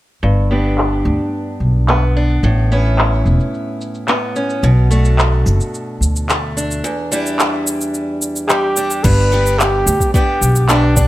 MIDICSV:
0, 0, Header, 1, 5, 480
1, 0, Start_track
1, 0, Tempo, 550459
1, 203, Time_signature, 4, 2, 24, 8
1, 9658, End_track
2, 0, Start_track
2, 0, Title_t, "Flugelhorn"
2, 0, Program_c, 0, 56
2, 7396, Note_on_c, 0, 67, 108
2, 7883, Note_on_c, 0, 71, 98
2, 7896, Note_off_c, 0, 67, 0
2, 8361, Note_on_c, 0, 67, 90
2, 8375, Note_off_c, 0, 71, 0
2, 8838, Note_off_c, 0, 67, 0
2, 8843, Note_on_c, 0, 67, 91
2, 9328, Note_on_c, 0, 62, 89
2, 9341, Note_off_c, 0, 67, 0
2, 9658, Note_off_c, 0, 62, 0
2, 9658, End_track
3, 0, Start_track
3, 0, Title_t, "Steel-string acoustic guitar"
3, 0, Program_c, 1, 25
3, 199, Note_on_c, 1, 43, 71
3, 442, Note_on_c, 1, 59, 49
3, 449, Note_on_c, 1, 62, 46
3, 453, Note_on_c, 1, 67, 49
3, 1640, Note_off_c, 1, 59, 0
3, 1643, Note_on_c, 1, 59, 55
3, 1878, Note_off_c, 1, 62, 0
3, 1888, Note_on_c, 1, 62, 52
3, 2121, Note_off_c, 1, 43, 0
3, 2125, Note_on_c, 1, 45, 76
3, 2174, Note_off_c, 1, 62, 0
3, 2176, Note_off_c, 1, 67, 0
3, 2365, Note_off_c, 1, 59, 0
3, 2368, Note_on_c, 1, 59, 48
3, 2373, Note_on_c, 1, 61, 50
3, 2378, Note_on_c, 1, 64, 54
3, 3555, Note_off_c, 1, 59, 0
3, 3559, Note_on_c, 1, 59, 58
3, 3791, Note_off_c, 1, 61, 0
3, 3802, Note_on_c, 1, 61, 56
3, 4038, Note_off_c, 1, 45, 0
3, 4042, Note_on_c, 1, 47, 76
3, 4091, Note_off_c, 1, 61, 0
3, 4099, Note_off_c, 1, 64, 0
3, 4275, Note_off_c, 1, 59, 0
3, 4278, Note_on_c, 1, 57, 52
3, 4287, Note_on_c, 1, 62, 47
3, 4295, Note_on_c, 1, 66, 49
3, 5478, Note_off_c, 1, 57, 0
3, 5489, Note_on_c, 1, 57, 56
3, 5725, Note_off_c, 1, 62, 0
3, 5728, Note_on_c, 1, 62, 49
3, 5963, Note_off_c, 1, 47, 0
3, 5965, Note_on_c, 1, 40, 80
3, 6014, Note_off_c, 1, 57, 0
3, 6015, Note_off_c, 1, 66, 0
3, 6205, Note_on_c, 1, 55, 54
3, 6208, Note_off_c, 1, 62, 0
3, 6211, Note_on_c, 1, 62, 57
3, 6216, Note_on_c, 1, 64, 57
3, 7406, Note_off_c, 1, 55, 0
3, 7409, Note_on_c, 1, 55, 61
3, 7647, Note_off_c, 1, 62, 0
3, 7650, Note_on_c, 1, 62, 53
3, 7884, Note_off_c, 1, 40, 0
3, 7890, Note_on_c, 1, 43, 75
3, 7938, Note_off_c, 1, 64, 0
3, 8123, Note_off_c, 1, 55, 0
3, 8126, Note_on_c, 1, 59, 51
3, 8131, Note_off_c, 1, 62, 0
3, 8134, Note_on_c, 1, 62, 53
3, 8141, Note_on_c, 1, 67, 56
3, 8835, Note_off_c, 1, 62, 0
3, 8838, Note_off_c, 1, 59, 0
3, 8841, Note_on_c, 1, 59, 57
3, 8842, Note_off_c, 1, 67, 0
3, 8848, Note_on_c, 1, 62, 49
3, 8853, Note_on_c, 1, 67, 61
3, 9315, Note_off_c, 1, 59, 0
3, 9315, Note_off_c, 1, 62, 0
3, 9318, Note_off_c, 1, 67, 0
3, 9318, Note_on_c, 1, 59, 62
3, 9324, Note_on_c, 1, 62, 64
3, 9332, Note_on_c, 1, 67, 59
3, 9549, Note_off_c, 1, 62, 0
3, 9560, Note_on_c, 1, 62, 53
3, 9658, Note_off_c, 1, 43, 0
3, 9658, Note_off_c, 1, 59, 0
3, 9658, Note_off_c, 1, 62, 0
3, 9658, Note_off_c, 1, 67, 0
3, 9658, End_track
4, 0, Start_track
4, 0, Title_t, "Upright bass"
4, 0, Program_c, 2, 32
4, 200, Note_on_c, 2, 31, 84
4, 886, Note_off_c, 2, 31, 0
4, 917, Note_on_c, 2, 38, 87
4, 1018, Note_off_c, 2, 38, 0
4, 1397, Note_on_c, 2, 35, 73
4, 2084, Note_off_c, 2, 35, 0
4, 2120, Note_on_c, 2, 33, 89
4, 2806, Note_off_c, 2, 33, 0
4, 2839, Note_on_c, 2, 28, 84
4, 2939, Note_off_c, 2, 28, 0
4, 4037, Note_on_c, 2, 35, 87
4, 4724, Note_off_c, 2, 35, 0
4, 4761, Note_on_c, 2, 30, 92
4, 4860, Note_off_c, 2, 30, 0
4, 5238, Note_on_c, 2, 38, 79
4, 5925, Note_off_c, 2, 38, 0
4, 7886, Note_on_c, 2, 31, 92
4, 8569, Note_off_c, 2, 31, 0
4, 8602, Note_on_c, 2, 38, 93
4, 8700, Note_off_c, 2, 38, 0
4, 9080, Note_on_c, 2, 35, 86
4, 9658, Note_off_c, 2, 35, 0
4, 9658, End_track
5, 0, Start_track
5, 0, Title_t, "Drums"
5, 681, Note_on_c, 9, 39, 88
5, 768, Note_off_c, 9, 39, 0
5, 986, Note_on_c, 9, 69, 71
5, 1073, Note_off_c, 9, 69, 0
5, 1167, Note_on_c, 9, 69, 40
5, 1254, Note_off_c, 9, 69, 0
5, 1411, Note_on_c, 9, 69, 64
5, 1498, Note_off_c, 9, 69, 0
5, 1531, Note_on_c, 9, 69, 36
5, 1619, Note_off_c, 9, 69, 0
5, 1644, Note_on_c, 9, 39, 89
5, 1731, Note_off_c, 9, 39, 0
5, 1887, Note_on_c, 9, 69, 64
5, 1974, Note_off_c, 9, 69, 0
5, 2011, Note_on_c, 9, 69, 38
5, 2098, Note_off_c, 9, 69, 0
5, 2366, Note_on_c, 9, 69, 66
5, 2453, Note_off_c, 9, 69, 0
5, 2486, Note_on_c, 9, 69, 39
5, 2574, Note_off_c, 9, 69, 0
5, 2603, Note_on_c, 9, 39, 94
5, 2609, Note_on_c, 9, 69, 28
5, 2690, Note_off_c, 9, 39, 0
5, 2696, Note_off_c, 9, 69, 0
5, 2847, Note_on_c, 9, 69, 74
5, 2934, Note_off_c, 9, 69, 0
5, 2966, Note_on_c, 9, 69, 41
5, 3054, Note_off_c, 9, 69, 0
5, 3089, Note_on_c, 9, 69, 31
5, 3177, Note_off_c, 9, 69, 0
5, 3324, Note_on_c, 9, 69, 71
5, 3411, Note_off_c, 9, 69, 0
5, 3442, Note_on_c, 9, 69, 37
5, 3529, Note_off_c, 9, 69, 0
5, 3559, Note_on_c, 9, 39, 95
5, 3565, Note_on_c, 9, 69, 30
5, 3646, Note_off_c, 9, 39, 0
5, 3652, Note_off_c, 9, 69, 0
5, 3801, Note_on_c, 9, 69, 67
5, 3889, Note_off_c, 9, 69, 0
5, 3923, Note_on_c, 9, 69, 38
5, 4010, Note_off_c, 9, 69, 0
5, 4037, Note_on_c, 9, 69, 29
5, 4124, Note_off_c, 9, 69, 0
5, 4284, Note_on_c, 9, 69, 70
5, 4371, Note_off_c, 9, 69, 0
5, 4403, Note_on_c, 9, 69, 42
5, 4490, Note_off_c, 9, 69, 0
5, 4522, Note_on_c, 9, 39, 92
5, 4528, Note_on_c, 9, 69, 31
5, 4609, Note_off_c, 9, 39, 0
5, 4615, Note_off_c, 9, 69, 0
5, 4765, Note_on_c, 9, 69, 72
5, 4853, Note_off_c, 9, 69, 0
5, 4889, Note_on_c, 9, 69, 42
5, 4977, Note_off_c, 9, 69, 0
5, 5009, Note_on_c, 9, 69, 32
5, 5096, Note_off_c, 9, 69, 0
5, 5253, Note_on_c, 9, 69, 71
5, 5340, Note_off_c, 9, 69, 0
5, 5372, Note_on_c, 9, 69, 41
5, 5459, Note_off_c, 9, 69, 0
5, 5487, Note_on_c, 9, 39, 85
5, 5493, Note_on_c, 9, 69, 34
5, 5575, Note_off_c, 9, 39, 0
5, 5581, Note_off_c, 9, 69, 0
5, 5735, Note_on_c, 9, 69, 68
5, 5822, Note_off_c, 9, 69, 0
5, 5852, Note_on_c, 9, 69, 38
5, 5939, Note_off_c, 9, 69, 0
5, 5974, Note_on_c, 9, 69, 30
5, 6061, Note_off_c, 9, 69, 0
5, 6211, Note_on_c, 9, 69, 66
5, 6298, Note_off_c, 9, 69, 0
5, 6333, Note_on_c, 9, 69, 40
5, 6420, Note_off_c, 9, 69, 0
5, 6446, Note_on_c, 9, 39, 91
5, 6452, Note_on_c, 9, 69, 31
5, 6533, Note_off_c, 9, 39, 0
5, 6539, Note_off_c, 9, 69, 0
5, 6688, Note_on_c, 9, 69, 69
5, 6775, Note_off_c, 9, 69, 0
5, 6810, Note_on_c, 9, 69, 42
5, 6897, Note_off_c, 9, 69, 0
5, 6926, Note_on_c, 9, 69, 32
5, 7013, Note_off_c, 9, 69, 0
5, 7167, Note_on_c, 9, 69, 74
5, 7254, Note_off_c, 9, 69, 0
5, 7289, Note_on_c, 9, 69, 41
5, 7376, Note_off_c, 9, 69, 0
5, 7404, Note_on_c, 9, 39, 88
5, 7410, Note_on_c, 9, 69, 32
5, 7491, Note_off_c, 9, 39, 0
5, 7497, Note_off_c, 9, 69, 0
5, 7644, Note_on_c, 9, 69, 77
5, 7731, Note_off_c, 9, 69, 0
5, 7764, Note_on_c, 9, 69, 39
5, 7851, Note_off_c, 9, 69, 0
5, 7884, Note_on_c, 9, 49, 84
5, 7887, Note_on_c, 9, 36, 106
5, 7890, Note_on_c, 9, 69, 31
5, 7971, Note_off_c, 9, 49, 0
5, 7974, Note_off_c, 9, 36, 0
5, 7977, Note_off_c, 9, 69, 0
5, 8254, Note_on_c, 9, 69, 42
5, 8341, Note_off_c, 9, 69, 0
5, 8368, Note_on_c, 9, 39, 101
5, 8374, Note_on_c, 9, 69, 31
5, 8455, Note_off_c, 9, 39, 0
5, 8461, Note_off_c, 9, 69, 0
5, 8609, Note_on_c, 9, 69, 75
5, 8696, Note_off_c, 9, 69, 0
5, 8723, Note_on_c, 9, 36, 59
5, 8730, Note_on_c, 9, 69, 40
5, 8810, Note_off_c, 9, 36, 0
5, 8817, Note_off_c, 9, 69, 0
5, 8843, Note_on_c, 9, 36, 111
5, 8853, Note_on_c, 9, 69, 32
5, 8931, Note_off_c, 9, 36, 0
5, 8940, Note_off_c, 9, 69, 0
5, 9088, Note_on_c, 9, 69, 71
5, 9175, Note_off_c, 9, 69, 0
5, 9204, Note_on_c, 9, 69, 38
5, 9291, Note_off_c, 9, 69, 0
5, 9320, Note_on_c, 9, 39, 93
5, 9326, Note_on_c, 9, 69, 29
5, 9407, Note_off_c, 9, 39, 0
5, 9413, Note_off_c, 9, 69, 0
5, 9562, Note_on_c, 9, 36, 94
5, 9563, Note_on_c, 9, 69, 67
5, 9650, Note_off_c, 9, 36, 0
5, 9650, Note_off_c, 9, 69, 0
5, 9658, End_track
0, 0, End_of_file